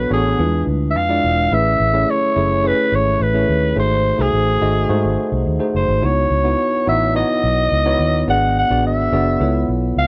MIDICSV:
0, 0, Header, 1, 4, 480
1, 0, Start_track
1, 0, Tempo, 563910
1, 1290, Time_signature, 4, 2, 24, 8
1, 8572, End_track
2, 0, Start_track
2, 0, Title_t, "Alto saxophone"
2, 0, Program_c, 0, 65
2, 0, Note_on_c, 0, 71, 101
2, 102, Note_off_c, 0, 71, 0
2, 115, Note_on_c, 0, 68, 83
2, 560, Note_off_c, 0, 68, 0
2, 770, Note_on_c, 0, 76, 83
2, 822, Note_on_c, 0, 77, 105
2, 835, Note_off_c, 0, 76, 0
2, 1308, Note_on_c, 0, 76, 110
2, 1321, Note_off_c, 0, 77, 0
2, 1791, Note_on_c, 0, 73, 105
2, 1803, Note_off_c, 0, 76, 0
2, 2275, Note_on_c, 0, 71, 109
2, 2288, Note_off_c, 0, 73, 0
2, 2514, Note_on_c, 0, 73, 95
2, 2526, Note_off_c, 0, 71, 0
2, 2747, Note_on_c, 0, 71, 95
2, 2760, Note_off_c, 0, 73, 0
2, 3218, Note_off_c, 0, 71, 0
2, 3231, Note_on_c, 0, 72, 100
2, 3587, Note_on_c, 0, 68, 91
2, 3600, Note_off_c, 0, 72, 0
2, 4538, Note_off_c, 0, 68, 0
2, 4906, Note_on_c, 0, 72, 83
2, 5146, Note_on_c, 0, 73, 95
2, 5158, Note_off_c, 0, 72, 0
2, 5857, Note_off_c, 0, 73, 0
2, 5861, Note_on_c, 0, 76, 99
2, 6078, Note_off_c, 0, 76, 0
2, 6096, Note_on_c, 0, 75, 110
2, 7018, Note_off_c, 0, 75, 0
2, 7065, Note_on_c, 0, 78, 125
2, 7281, Note_off_c, 0, 78, 0
2, 7309, Note_on_c, 0, 78, 116
2, 7523, Note_off_c, 0, 78, 0
2, 7549, Note_on_c, 0, 76, 98
2, 8236, Note_off_c, 0, 76, 0
2, 8503, Note_on_c, 0, 77, 106
2, 8572, Note_off_c, 0, 77, 0
2, 8572, End_track
3, 0, Start_track
3, 0, Title_t, "Tine electric piano"
3, 0, Program_c, 1, 4
3, 0, Control_c, 1, 64, 127
3, 0, Note_on_c, 1, 59, 76
3, 0, Note_on_c, 1, 62, 68
3, 0, Note_on_c, 1, 66, 66
3, 0, Note_on_c, 1, 69, 67
3, 0, Note_on_c, 1, 73, 81
3, 86, Note_off_c, 1, 59, 0
3, 86, Note_on_c, 1, 59, 76
3, 88, Note_off_c, 1, 62, 0
3, 88, Note_on_c, 1, 62, 68
3, 90, Note_off_c, 1, 66, 0
3, 90, Note_on_c, 1, 66, 71
3, 92, Note_off_c, 1, 69, 0
3, 92, Note_on_c, 1, 69, 70
3, 96, Note_off_c, 1, 73, 0
3, 96, Note_on_c, 1, 73, 90
3, 236, Note_off_c, 1, 59, 0
3, 237, Note_off_c, 1, 62, 0
3, 238, Note_off_c, 1, 66, 0
3, 239, Note_off_c, 1, 69, 0
3, 240, Note_off_c, 1, 73, 0
3, 327, Note_on_c, 1, 55, 56
3, 330, Note_on_c, 1, 62, 65
3, 332, Note_on_c, 1, 64, 65
3, 334, Note_on_c, 1, 65, 68
3, 338, Note_on_c, 1, 71, 77
3, 343, Control_c, 1, 64, 0
3, 382, Note_on_c, 1, 56, 73
3, 384, Note_off_c, 1, 55, 0
3, 481, Control_c, 1, 64, 127
3, 698, Note_off_c, 1, 62, 0
3, 699, Note_off_c, 1, 64, 0
3, 700, Note_off_c, 1, 65, 0
3, 702, Note_off_c, 1, 71, 0
3, 724, Note_off_c, 1, 56, 0
3, 925, Note_on_c, 1, 56, 68
3, 930, Note_on_c, 1, 62, 68
3, 931, Note_on_c, 1, 64, 62
3, 933, Note_on_c, 1, 65, 61
3, 936, Note_on_c, 1, 74, 79
3, 1148, Note_off_c, 1, 56, 0
3, 1150, Note_off_c, 1, 62, 0
3, 1151, Note_off_c, 1, 64, 0
3, 1152, Note_off_c, 1, 65, 0
3, 1154, Note_off_c, 1, 74, 0
3, 1290, Note_on_c, 1, 57, 70
3, 1291, Note_on_c, 1, 61, 65
3, 1293, Note_on_c, 1, 64, 71
3, 1296, Note_on_c, 1, 68, 65
3, 1298, Note_on_c, 1, 71, 75
3, 1303, Control_c, 1, 64, 0
3, 1427, Control_c, 1, 64, 127
3, 1510, Note_off_c, 1, 57, 0
3, 1511, Note_off_c, 1, 61, 0
3, 1512, Note_off_c, 1, 64, 0
3, 1513, Note_off_c, 1, 68, 0
3, 1515, Note_off_c, 1, 71, 0
3, 1643, Note_on_c, 1, 57, 78
3, 1648, Note_on_c, 1, 61, 68
3, 1649, Note_on_c, 1, 64, 67
3, 1653, Note_on_c, 1, 68, 66
3, 1654, Note_on_c, 1, 73, 78
3, 1867, Note_off_c, 1, 57, 0
3, 1869, Note_off_c, 1, 61, 0
3, 1870, Note_off_c, 1, 64, 0
3, 1872, Note_off_c, 1, 68, 0
3, 1872, Note_off_c, 1, 73, 0
3, 2005, Note_on_c, 1, 57, 77
3, 2007, Note_on_c, 1, 61, 74
3, 2009, Note_on_c, 1, 64, 71
3, 2012, Note_on_c, 1, 68, 68
3, 2015, Note_on_c, 1, 73, 86
3, 2154, Note_off_c, 1, 57, 0
3, 2155, Note_off_c, 1, 61, 0
3, 2157, Note_off_c, 1, 64, 0
3, 2158, Note_off_c, 1, 68, 0
3, 2160, Note_off_c, 1, 73, 0
3, 2243, Note_on_c, 1, 57, 69
3, 2247, Note_on_c, 1, 61, 69
3, 2250, Note_on_c, 1, 64, 63
3, 2251, Note_on_c, 1, 68, 66
3, 2255, Note_on_c, 1, 73, 84
3, 2614, Note_off_c, 1, 57, 0
3, 2616, Note_off_c, 1, 61, 0
3, 2617, Note_off_c, 1, 64, 0
3, 2618, Note_off_c, 1, 68, 0
3, 2620, Note_off_c, 1, 73, 0
3, 2844, Note_on_c, 1, 57, 69
3, 2845, Note_on_c, 1, 61, 66
3, 2848, Note_on_c, 1, 64, 66
3, 2848, Note_on_c, 1, 68, 62
3, 2851, Note_on_c, 1, 73, 72
3, 3067, Note_off_c, 1, 57, 0
3, 3068, Note_off_c, 1, 61, 0
3, 3069, Note_off_c, 1, 64, 0
3, 3069, Note_off_c, 1, 68, 0
3, 3071, Note_off_c, 1, 73, 0
3, 3201, Note_on_c, 1, 57, 74
3, 3204, Note_on_c, 1, 63, 70
3, 3207, Note_on_c, 1, 66, 64
3, 3210, Note_on_c, 1, 68, 62
3, 3210, Note_on_c, 1, 72, 81
3, 3220, Control_c, 1, 64, 0
3, 3360, Control_c, 1, 64, 127
3, 3425, Note_off_c, 1, 57, 0
3, 3427, Note_off_c, 1, 63, 0
3, 3429, Note_off_c, 1, 66, 0
3, 3430, Note_off_c, 1, 68, 0
3, 3430, Note_off_c, 1, 72, 0
3, 3557, Note_on_c, 1, 57, 73
3, 3561, Note_on_c, 1, 63, 62
3, 3564, Note_on_c, 1, 66, 64
3, 3568, Note_on_c, 1, 68, 66
3, 3569, Note_on_c, 1, 72, 77
3, 3783, Note_off_c, 1, 57, 0
3, 3785, Note_off_c, 1, 63, 0
3, 3787, Note_off_c, 1, 66, 0
3, 3789, Note_off_c, 1, 68, 0
3, 3790, Note_off_c, 1, 72, 0
3, 3925, Note_on_c, 1, 57, 80
3, 3925, Note_on_c, 1, 63, 72
3, 3929, Note_on_c, 1, 66, 73
3, 3932, Note_on_c, 1, 68, 65
3, 3934, Note_on_c, 1, 75, 91
3, 4074, Note_off_c, 1, 57, 0
3, 4074, Note_off_c, 1, 63, 0
3, 4076, Note_off_c, 1, 66, 0
3, 4078, Note_off_c, 1, 68, 0
3, 4078, Note_off_c, 1, 75, 0
3, 4162, Note_on_c, 1, 57, 88
3, 4164, Note_on_c, 1, 63, 85
3, 4167, Note_on_c, 1, 66, 78
3, 4172, Note_on_c, 1, 68, 77
3, 4173, Note_on_c, 1, 72, 95
3, 4533, Note_off_c, 1, 57, 0
3, 4534, Note_off_c, 1, 63, 0
3, 4535, Note_off_c, 1, 66, 0
3, 4538, Note_off_c, 1, 68, 0
3, 4539, Note_off_c, 1, 72, 0
3, 4759, Note_on_c, 1, 57, 70
3, 4763, Note_on_c, 1, 63, 64
3, 4765, Note_on_c, 1, 66, 61
3, 4767, Note_on_c, 1, 68, 61
3, 4770, Note_on_c, 1, 72, 76
3, 4984, Note_off_c, 1, 57, 0
3, 4986, Note_off_c, 1, 63, 0
3, 4987, Note_off_c, 1, 66, 0
3, 4989, Note_off_c, 1, 68, 0
3, 4990, Note_off_c, 1, 72, 0
3, 5125, Note_on_c, 1, 59, 69
3, 5127, Note_on_c, 1, 63, 61
3, 5128, Note_on_c, 1, 64, 68
3, 5132, Note_on_c, 1, 66, 60
3, 5134, Note_on_c, 1, 73, 76
3, 5139, Control_c, 1, 64, 0
3, 5312, Control_c, 1, 64, 127
3, 5347, Note_off_c, 1, 59, 0
3, 5348, Note_off_c, 1, 63, 0
3, 5349, Note_off_c, 1, 64, 0
3, 5351, Note_off_c, 1, 66, 0
3, 5352, Note_off_c, 1, 73, 0
3, 5481, Note_on_c, 1, 59, 73
3, 5485, Note_on_c, 1, 63, 66
3, 5487, Note_on_c, 1, 64, 65
3, 5488, Note_on_c, 1, 66, 64
3, 5490, Note_on_c, 1, 73, 74
3, 5706, Note_off_c, 1, 59, 0
3, 5707, Note_off_c, 1, 63, 0
3, 5708, Note_off_c, 1, 64, 0
3, 5709, Note_off_c, 1, 66, 0
3, 5710, Note_off_c, 1, 73, 0
3, 5843, Note_on_c, 1, 59, 76
3, 5848, Note_on_c, 1, 63, 75
3, 5851, Note_on_c, 1, 64, 71
3, 5851, Note_on_c, 1, 66, 71
3, 5855, Note_on_c, 1, 73, 89
3, 5993, Note_off_c, 1, 59, 0
3, 5995, Note_off_c, 1, 63, 0
3, 5997, Note_off_c, 1, 64, 0
3, 5997, Note_off_c, 1, 66, 0
3, 5999, Note_off_c, 1, 73, 0
3, 6083, Note_on_c, 1, 59, 72
3, 6087, Note_on_c, 1, 63, 67
3, 6090, Note_on_c, 1, 64, 62
3, 6092, Note_on_c, 1, 66, 65
3, 6095, Note_on_c, 1, 73, 73
3, 6454, Note_off_c, 1, 59, 0
3, 6456, Note_off_c, 1, 63, 0
3, 6457, Note_off_c, 1, 64, 0
3, 6458, Note_off_c, 1, 66, 0
3, 6459, Note_off_c, 1, 73, 0
3, 6685, Note_on_c, 1, 59, 82
3, 6686, Note_on_c, 1, 63, 76
3, 6689, Note_on_c, 1, 64, 78
3, 6690, Note_on_c, 1, 66, 73
3, 6696, Note_on_c, 1, 73, 93
3, 6907, Note_off_c, 1, 59, 0
3, 6908, Note_off_c, 1, 63, 0
3, 6910, Note_off_c, 1, 64, 0
3, 6910, Note_off_c, 1, 66, 0
3, 6913, Note_off_c, 1, 73, 0
3, 7044, Note_on_c, 1, 59, 74
3, 7048, Note_on_c, 1, 62, 66
3, 7050, Note_on_c, 1, 66, 61
3, 7050, Note_on_c, 1, 68, 65
3, 7054, Note_on_c, 1, 74, 86
3, 7060, Control_c, 1, 64, 0
3, 7210, Control_c, 1, 64, 127
3, 7267, Note_off_c, 1, 59, 0
3, 7269, Note_off_c, 1, 62, 0
3, 7270, Note_off_c, 1, 66, 0
3, 7270, Note_off_c, 1, 68, 0
3, 7272, Note_off_c, 1, 74, 0
3, 7409, Note_on_c, 1, 59, 75
3, 7409, Note_on_c, 1, 62, 62
3, 7411, Note_on_c, 1, 66, 67
3, 7414, Note_on_c, 1, 68, 64
3, 7416, Note_on_c, 1, 74, 77
3, 7629, Note_off_c, 1, 59, 0
3, 7630, Note_off_c, 1, 62, 0
3, 7631, Note_off_c, 1, 66, 0
3, 7632, Note_off_c, 1, 68, 0
3, 7633, Note_off_c, 1, 74, 0
3, 7766, Note_on_c, 1, 59, 81
3, 7768, Note_on_c, 1, 62, 72
3, 7768, Note_on_c, 1, 66, 73
3, 7773, Note_on_c, 1, 68, 73
3, 7775, Note_on_c, 1, 74, 80
3, 7914, Note_off_c, 1, 59, 0
3, 7915, Note_off_c, 1, 62, 0
3, 7916, Note_off_c, 1, 66, 0
3, 7918, Note_off_c, 1, 68, 0
3, 7919, Note_off_c, 1, 74, 0
3, 8002, Note_on_c, 1, 59, 75
3, 8008, Note_on_c, 1, 64, 68
3, 8009, Note_on_c, 1, 65, 67
3, 8010, Note_on_c, 1, 69, 66
3, 8013, Note_on_c, 1, 73, 80
3, 8021, Control_c, 1, 64, 0
3, 8175, Control_c, 1, 64, 127
3, 8373, Note_off_c, 1, 59, 0
3, 8376, Note_off_c, 1, 64, 0
3, 8377, Note_off_c, 1, 65, 0
3, 8377, Note_off_c, 1, 69, 0
3, 8379, Note_off_c, 1, 73, 0
3, 8572, End_track
4, 0, Start_track
4, 0, Title_t, "Fingered electric bass"
4, 0, Program_c, 2, 33
4, 90, Note_on_c, 2, 33, 86
4, 289, Note_off_c, 2, 33, 0
4, 331, Note_on_c, 2, 40, 108
4, 529, Note_off_c, 2, 40, 0
4, 571, Note_on_c, 2, 38, 94
4, 814, Note_off_c, 2, 38, 0
4, 814, Note_on_c, 2, 41, 91
4, 1011, Note_off_c, 2, 41, 0
4, 1055, Note_on_c, 2, 28, 87
4, 1252, Note_off_c, 2, 28, 0
4, 1291, Note_on_c, 2, 33, 94
4, 1489, Note_off_c, 2, 33, 0
4, 1531, Note_on_c, 2, 33, 101
4, 1729, Note_off_c, 2, 33, 0
4, 2012, Note_on_c, 2, 30, 92
4, 2308, Note_off_c, 2, 30, 0
4, 2486, Note_on_c, 2, 32, 85
4, 2686, Note_off_c, 2, 32, 0
4, 2726, Note_on_c, 2, 33, 94
4, 2926, Note_off_c, 2, 33, 0
4, 2970, Note_on_c, 2, 39, 92
4, 3168, Note_off_c, 2, 39, 0
4, 3203, Note_on_c, 2, 32, 108
4, 3503, Note_off_c, 2, 32, 0
4, 3565, Note_on_c, 2, 36, 92
4, 3666, Note_off_c, 2, 36, 0
4, 3688, Note_on_c, 2, 33, 85
4, 3887, Note_off_c, 2, 33, 0
4, 3928, Note_on_c, 2, 32, 80
4, 4127, Note_off_c, 2, 32, 0
4, 4166, Note_on_c, 2, 44, 110
4, 4266, Note_off_c, 2, 44, 0
4, 4289, Note_on_c, 2, 32, 91
4, 4388, Note_off_c, 2, 32, 0
4, 4528, Note_on_c, 2, 36, 86
4, 4627, Note_off_c, 2, 36, 0
4, 4651, Note_on_c, 2, 39, 83
4, 4749, Note_off_c, 2, 39, 0
4, 4890, Note_on_c, 2, 30, 93
4, 4989, Note_off_c, 2, 30, 0
4, 5009, Note_on_c, 2, 32, 91
4, 5108, Note_off_c, 2, 32, 0
4, 5131, Note_on_c, 2, 37, 103
4, 5329, Note_off_c, 2, 37, 0
4, 5365, Note_on_c, 2, 37, 89
4, 5565, Note_off_c, 2, 37, 0
4, 5850, Note_on_c, 2, 33, 86
4, 6147, Note_off_c, 2, 33, 0
4, 6330, Note_on_c, 2, 35, 93
4, 6528, Note_off_c, 2, 35, 0
4, 6569, Note_on_c, 2, 37, 91
4, 6767, Note_off_c, 2, 37, 0
4, 6803, Note_on_c, 2, 39, 99
4, 7004, Note_off_c, 2, 39, 0
4, 7045, Note_on_c, 2, 32, 108
4, 7344, Note_off_c, 2, 32, 0
4, 7406, Note_on_c, 2, 34, 91
4, 7526, Note_off_c, 2, 34, 0
4, 7526, Note_on_c, 2, 32, 93
4, 7725, Note_off_c, 2, 32, 0
4, 7766, Note_on_c, 2, 30, 95
4, 7966, Note_off_c, 2, 30, 0
4, 8003, Note_on_c, 2, 37, 118
4, 8204, Note_off_c, 2, 37, 0
4, 8245, Note_on_c, 2, 35, 93
4, 8445, Note_off_c, 2, 35, 0
4, 8481, Note_on_c, 2, 37, 86
4, 8572, Note_off_c, 2, 37, 0
4, 8572, End_track
0, 0, End_of_file